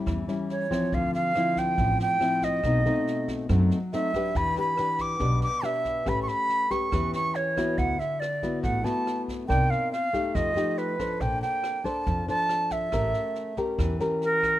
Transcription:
Already playing: nylon-string guitar G3 C#4 E4
0.06 upright bass E2, nylon-string guitar E3, kick, cross-stick, snare
0.28 nylon-string guitar G3 C#4 E4, snare
0.50 flute C#5, snare
0.71 nylon-string guitar F3 C4, kick, cross-stick, snare
0.92 upright bass D2, nylon-string guitar D3, flute F5, kick, snare
1.14 flute F5, snare
1.35 nylon-string guitar F3 C4 E4, cross-stick, snare
1.57 flute G5, kick, snare
1.78 upright bass A1, nylon-string guitar A2, kick, snare
2.00 flute G5, snare
2.21 nylon-string guitar F3 C4 E4, cross-stick, snare
2.42 flute D#5, kick, snare
2.63 upright bass B1, nylon-string guitar B2 A3 C4 D#4, kick, cross-stick, snare
2.85 nylon-string guitar A3 C4 D#4, snare
3.07 snare
3.28 kick, snare
3.49 upright bass F#2, nylon-string guitar F#3 A3 C4 D#4, kick, cross-stick, snare
3.71 snare
3.93 nylon-string guitar A3 C4 D#4, flute E5, snare
4.14 nylon-string guitar D4 G4 B4, kick, cross-stick, snare
4.35 upright bass E2, nylon-string guitar E3, flute B5, kick, snare
4.56 nylon-string guitar D4 G4 B4, flute B5, snare
4.77 nylon-string guitar D4 G4 B4, cross-stick, snare
4.98 flute D6, kick, snare
5.20 upright bass B1, nylon-string guitar B2 D4 G4 B4, kick, snare
5.42 flute D6, snare
5.63 nylon-string guitar D4 G4 B4, flute E5, cross-stick, snare
5.85 kick, snare
6.06 upright bass A1, nylon-string guitar A3 C#4 G4 B4, flute B5, kick, cross-stick, snare
6.23 flute C#6
6.28 flute B5, snare
6.49 snare
6.70 nylon-string guitar C#4 G4 B4, flute C#6, kick, snare
6.92 upright bass E2, nylon-string guitar E3 C#4 G4 B4, kick, cross-stick, snare
7.13 flute C#6, snare
7.35 flute C#5, snare
7.57 nylon-string guitar B3 E4 F#4, kick, cross-stick, snare
7.78 upright bass D2, nylon-string guitar D3, flute F#5, kick, snare
7.99 flute E5, snare
8.20 flute D5, cross-stick, snare
8.42 nylon-string guitar B3 E4 F#4, kick, snare
8.63 upright bass A1, nylon-string guitar A3, flute F#5, kick, snare
8.84 nylon-string guitar B3 E4 F#4, flute A5, snare
9.07 cross-stick, snare
9.28 kick, snare
9.48 upright bass C2, nylon-string guitar C4 D#4 A#4 D5, flute G5, kick, cross-stick, snare
9.70 flute F5, snare
9.92 flute F5, snare
10.13 nylon-string guitar A3 D#4 G4, kick, snare
10.35 upright bass F2, nylon-string guitar F3, flute D#5, kick, cross-stick, snare
10.55 nylon-string guitar A3 D#4 G4, snare
10.78 flute B4, snare
10.99 nylon-string guitar D4 A4 C5, kick, cross-stick, snare
11.21 upright bass A#1, nylon-string guitar A#3, flute G5, kick, snare
11.42 flute G5, snare
11.64 cross-stick, snare
11.84 nylon-string guitar D4 A4 C5, flute A5, kick, snare
12.07 upright bass F2, nylon-string guitar F3, kick, snare
12.28 nylon-string guitar D4 A4 C5, flute A5, snare
12.49 cross-stick, snare
12.70 flute E5, kick, snare
12.92 upright bass A1, nylon-string guitar A3 C#4 G4 A#4, kick, cross-stick, snare
13.14 snare
13.36 snare
13.57 nylon-string guitar C#4 G4 A#4, kick, snare
13.79 upright bass E2, nylon-string guitar E3, kick, cross-stick, snare
14.00 nylon-string guitar C#4 G4 A#4, snare
14.21 flute A#4, snare
14.43 kick, cross-stick, snare

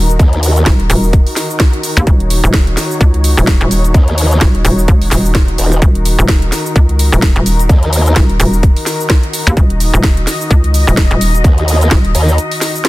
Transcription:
Already playing: fm bass D#1, string section D#3 D#4 F#4 A#4
0.10 closed hi-hat, shaker
0.19 wobble bass D#2, kick, closed hi-hat, shaker
0.33 closed hi-hat
0.43 open hi-hat, shaker
0.56 closed hi-hat, shaker
0.66 fm bass D#1, kick, snare, closed hi-hat, shaker
0.80 closed hi-hat
0.90 fm bass D#1, open hi-hat, shaker
1.04 shaker
1.13 kick, closed hi-hat, shaker
1.27 open hi-hat
1.36 snare, open hi-hat, shaker
1.50 shaker
1.60 kick, snare, closed hi-hat, shaker
1.73 closed hi-hat
1.83 open hi-hat, shaker
1.97 fm bass D#2, shaker
2.07 fm bass D#1, string section C#5, kick, closed hi-hat, shaker
2.20 closed hi-hat
2.30 open hi-hat, shaker
2.44 fm bass D#1, closed hi-hat, shaker
2.54 kick, snare, closed hi-hat, shaker
2.67 closed hi-hat
2.77 snare, open hi-hat, shaker
2.91 shaker
3.01 fm bass C#2, kick, closed hi-hat, shaker
3.14 closed hi-hat
3.24 open hi-hat, shaker
3.37 fm bass D#1, shaker
3.47 kick, snare, closed hi-hat, shaker
3.61 fm bass D#1, closed hi-hat
3.71 open hi-hat, shaker
3.84 closed hi-hat, shaker
3.94 wobble bass D#2, kick, closed hi-hat, shaker
4.08 closed hi-hat
4.18 open hi-hat, shaker
4.31 closed hi-hat, shaker
4.41 fm bass D#1, kick, snare, closed hi-hat, shaker
4.55 closed hi-hat
4.65 fm bass D#1, open hi-hat, shaker
4.79 shaker
4.88 fm bass E1, kick, closed hi-hat, shaker
5.02 open hi-hat
5.11 fm bass D#1, snare, open hi-hat, shaker
5.25 shaker
5.35 kick, snare, closed hi-hat, shaker
5.48 closed hi-hat
5.58 wobble bass D#1, open hi-hat, shaker
5.72 closed hi-hat, shaker
5.82 fm bass D#1, string section A#4, kick, closed hi-hat, shaker
5.95 closed hi-hat
6.05 open hi-hat, shaker
6.19 fm bass D#1, closed hi-hat, shaker
6.28 kick, snare, closed hi-hat, shaker
6.42 closed hi-hat
6.52 snare, open hi-hat, shaker
6.66 shaker
6.76 fm bass C#2, kick, closed hi-hat, shaker
6.89 closed hi-hat
6.99 open hi-hat, shaker
7.12 fm bass D#1, shaker
7.22 kick, snare, closed hi-hat, shaker
7.36 fm bass D#1, closed hi-hat
7.46 open hi-hat, shaker
7.59 closed hi-hat, shaker
7.69 wobble bass D#2, kick, closed hi-hat, shaker
7.83 closed hi-hat
7.93 open hi-hat, shaker
8.06 closed hi-hat, shaker
8.16 fm bass D#1, kick, snare, closed hi-hat, shaker
8.30 closed hi-hat
8.40 fm bass D#1, open hi-hat, shaker
8.53 shaker
8.63 kick, closed hi-hat, shaker
8.77 open hi-hat
8.86 snare, open hi-hat, shaker
9.00 shaker
9.10 kick, snare, closed hi-hat, shaker
9.23 closed hi-hat
9.33 open hi-hat, shaker
9.47 fm bass D#2, shaker
9.57 fm bass D#1, string section D#5, kick, closed hi-hat, shaker
9.70 closed hi-hat
9.80 open hi-hat, shaker
9.94 fm bass D#1, closed hi-hat, shaker
10.03 kick, snare, closed hi-hat, shaker
10.17 closed hi-hat
10.27 snare, open hi-hat, shaker
10.41 shaker
10.51 fm bass C#2, kick, closed hi-hat, shaker
10.64 closed hi-hat
10.74 open hi-hat, shaker
10.87 fm bass D#1, shaker
10.97 kick, snare, closed hi-hat, shaker
11.11 fm bass D#1, closed hi-hat
11.21 open hi-hat, shaker
11.35 closed hi-hat, shaker
11.44 wobble bass D#2, kick, closed hi-hat, shaker
11.58 closed hi-hat
11.68 open hi-hat, shaker
11.81 closed hi-hat, shaker
11.91 fm bass D#1, kick, snare, closed hi-hat, shaker
12.05 closed hi-hat
12.15 wobble bass D#2, open hi-hat, shaker
12.29 shaker
12.38 closed hi-hat, shaker
12.52 open hi-hat
12.61 snare, open hi-hat, shaker
12.75 shaker
12.85 snare, closed hi-hat, shaker

